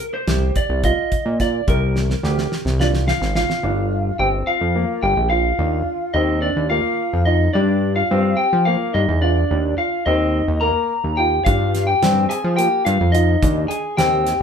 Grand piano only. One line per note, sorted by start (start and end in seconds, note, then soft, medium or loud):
0.29 0.58 G4 medium
0.85 1.14 F4 medium
1.40 1.55 F4 medium
1.69 1.98 A#4 medium
2.24 2.54 G4 medium
2.80 3.10 F4 medium
3.36 3.51 F4 medium
3.64 3.93 D4 medium
4.20 4.49 C4 medium
4.76 5.05 A#3 medium
5.31 5.46 F4 medium
5.59 5.89 D4 medium
6.16 6.45 C4 medium
6.71 7.01 A#3 medium
7.27 7.42 F4 medium
7.55 7.85 D4 medium
8.11 8.40 C4 medium
8.67 8.97 A#3 medium
9.23 9.38 F4 medium
9.51 9.80 D4 medium
10.07 10.37 C4 medium
10.63 10.92 A#3 medium
11.19 11.34 F4 medium
11.47 11.76 D4 medium
12.03 12.32 C4 medium
12.59 12.88 A#3 medium
13.15 13.29 F4 medium
13.43 13.72 D4 medium
13.99 14.28 C4 medium